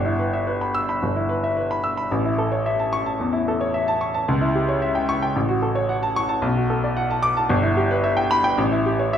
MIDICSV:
0, 0, Header, 1, 2, 480
1, 0, Start_track
1, 0, Tempo, 548446
1, 1851, Time_signature, 4, 2, 24, 8
1, 1851, Tempo, 539568
1, 8133, End_track
2, 0, Start_track
2, 0, Title_t, "Grand piano"
2, 0, Program_c, 0, 0
2, 0, Note_on_c, 0, 31, 82
2, 47, Note_on_c, 0, 64, 55
2, 90, Control_c, 0, 64, 127
2, 168, Note_on_c, 0, 71, 60
2, 243, Note_off_c, 0, 64, 0
2, 292, Note_on_c, 0, 76, 59
2, 362, Note_off_c, 0, 71, 0
2, 412, Note_on_c, 0, 71, 65
2, 483, Note_off_c, 0, 76, 0
2, 537, Note_on_c, 0, 83, 63
2, 603, Note_off_c, 0, 71, 0
2, 652, Note_on_c, 0, 88, 87
2, 725, Note_off_c, 0, 83, 0
2, 779, Note_on_c, 0, 83, 65
2, 844, Note_off_c, 0, 88, 0
2, 858, Note_off_c, 0, 31, 0
2, 899, Note_on_c, 0, 31, 68
2, 969, Note_off_c, 0, 83, 0
2, 1017, Note_on_c, 0, 64, 57
2, 1131, Note_on_c, 0, 71, 63
2, 1208, Note_off_c, 0, 64, 0
2, 1257, Note_on_c, 0, 76, 64
2, 1325, Note_off_c, 0, 71, 0
2, 1371, Note_on_c, 0, 71, 59
2, 1448, Note_off_c, 0, 76, 0
2, 1495, Note_on_c, 0, 83, 66
2, 1564, Note_off_c, 0, 71, 0
2, 1607, Note_on_c, 0, 88, 71
2, 1685, Note_off_c, 0, 83, 0
2, 1728, Note_on_c, 0, 83, 73
2, 1801, Note_off_c, 0, 88, 0
2, 1826, Note_off_c, 0, 31, 0
2, 1849, Note_off_c, 0, 83, 0
2, 1850, Note_on_c, 0, 33, 78
2, 1865, Control_c, 0, 64, 0
2, 1974, Note_on_c, 0, 64, 60
2, 2014, Control_c, 0, 64, 127
2, 2090, Note_on_c, 0, 69, 65
2, 2165, Note_off_c, 0, 64, 0
2, 2209, Note_on_c, 0, 73, 60
2, 2283, Note_off_c, 0, 69, 0
2, 2336, Note_on_c, 0, 76, 68
2, 2402, Note_off_c, 0, 73, 0
2, 2457, Note_on_c, 0, 81, 59
2, 2526, Note_off_c, 0, 76, 0
2, 2573, Note_on_c, 0, 85, 93
2, 2647, Note_off_c, 0, 81, 0
2, 2693, Note_on_c, 0, 81, 59
2, 2766, Note_off_c, 0, 85, 0
2, 2785, Note_off_c, 0, 33, 0
2, 2814, Note_on_c, 0, 40, 61
2, 2887, Note_off_c, 0, 81, 0
2, 2930, Note_on_c, 0, 64, 59
2, 3007, Note_off_c, 0, 40, 0
2, 3066, Note_on_c, 0, 69, 64
2, 3125, Note_off_c, 0, 64, 0
2, 3179, Note_on_c, 0, 73, 65
2, 3252, Note_off_c, 0, 69, 0
2, 3298, Note_on_c, 0, 76, 65
2, 3367, Note_off_c, 0, 73, 0
2, 3420, Note_on_c, 0, 81, 73
2, 3486, Note_off_c, 0, 76, 0
2, 3536, Note_on_c, 0, 85, 71
2, 3607, Note_off_c, 0, 81, 0
2, 3656, Note_on_c, 0, 81, 70
2, 3726, Note_off_c, 0, 85, 0
2, 3774, Note_off_c, 0, 81, 0
2, 3780, Note_on_c, 0, 37, 83
2, 3787, Control_c, 0, 64, 0
2, 3896, Note_on_c, 0, 64, 64
2, 3920, Control_c, 0, 64, 127
2, 4021, Note_on_c, 0, 67, 60
2, 4086, Note_off_c, 0, 64, 0
2, 4138, Note_on_c, 0, 73, 61
2, 4208, Note_off_c, 0, 67, 0
2, 4258, Note_on_c, 0, 76, 65
2, 4326, Note_off_c, 0, 73, 0
2, 4374, Note_on_c, 0, 79, 67
2, 4446, Note_off_c, 0, 76, 0
2, 4496, Note_on_c, 0, 85, 96
2, 4564, Note_off_c, 0, 79, 0
2, 4617, Note_on_c, 0, 79, 67
2, 4685, Note_off_c, 0, 85, 0
2, 4706, Note_off_c, 0, 37, 0
2, 4734, Note_off_c, 0, 79, 0
2, 4737, Note_on_c, 0, 33, 76
2, 4745, Control_c, 0, 64, 0
2, 4850, Note_on_c, 0, 66, 64
2, 4909, Control_c, 0, 64, 127
2, 4972, Note_on_c, 0, 69, 67
2, 5042, Note_off_c, 0, 66, 0
2, 5088, Note_on_c, 0, 73, 69
2, 5163, Note_off_c, 0, 69, 0
2, 5210, Note_on_c, 0, 78, 65
2, 5282, Note_off_c, 0, 73, 0
2, 5331, Note_on_c, 0, 81, 73
2, 5403, Note_off_c, 0, 78, 0
2, 5453, Note_on_c, 0, 85, 103
2, 5524, Note_off_c, 0, 81, 0
2, 5564, Note_on_c, 0, 81, 74
2, 5645, Note_off_c, 0, 85, 0
2, 5667, Note_off_c, 0, 33, 0
2, 5679, Note_on_c, 0, 35, 83
2, 5689, Note_off_c, 0, 81, 0
2, 5710, Control_c, 0, 64, 0
2, 5807, Note_on_c, 0, 66, 62
2, 5842, Control_c, 0, 64, 127
2, 5929, Note_on_c, 0, 69, 62
2, 6002, Note_off_c, 0, 66, 0
2, 6052, Note_on_c, 0, 74, 61
2, 6123, Note_off_c, 0, 69, 0
2, 6166, Note_on_c, 0, 78, 75
2, 6243, Note_off_c, 0, 74, 0
2, 6291, Note_on_c, 0, 81, 66
2, 6360, Note_off_c, 0, 78, 0
2, 6397, Note_on_c, 0, 86, 102
2, 6482, Note_off_c, 0, 81, 0
2, 6525, Note_on_c, 0, 81, 76
2, 6596, Note_off_c, 0, 86, 0
2, 6615, Note_off_c, 0, 35, 0
2, 6637, Note_on_c, 0, 31, 91
2, 6647, Note_off_c, 0, 81, 0
2, 6668, Control_c, 0, 64, 0
2, 6755, Note_on_c, 0, 64, 66
2, 6822, Control_c, 0, 64, 127
2, 6881, Note_on_c, 0, 67, 69
2, 6955, Note_off_c, 0, 64, 0
2, 7006, Note_on_c, 0, 71, 82
2, 7077, Note_off_c, 0, 67, 0
2, 7119, Note_on_c, 0, 76, 70
2, 7199, Note_off_c, 0, 71, 0
2, 7235, Note_on_c, 0, 79, 81
2, 7316, Note_off_c, 0, 76, 0
2, 7360, Note_on_c, 0, 83, 111
2, 7434, Note_off_c, 0, 79, 0
2, 7478, Note_on_c, 0, 79, 85
2, 7557, Note_off_c, 0, 83, 0
2, 7575, Note_off_c, 0, 31, 0
2, 7602, Note_on_c, 0, 33, 88
2, 7605, Note_off_c, 0, 79, 0
2, 7628, Control_c, 0, 64, 0
2, 7726, Note_on_c, 0, 64, 71
2, 7795, Control_c, 0, 64, 127
2, 7852, Note_on_c, 0, 67, 66
2, 7921, Note_off_c, 0, 64, 0
2, 7969, Note_on_c, 0, 73, 66
2, 8043, Note_off_c, 0, 67, 0
2, 8095, Note_on_c, 0, 76, 86
2, 8133, Note_off_c, 0, 33, 0
2, 8133, Note_off_c, 0, 73, 0
2, 8133, Note_off_c, 0, 76, 0
2, 8133, End_track
0, 0, End_of_file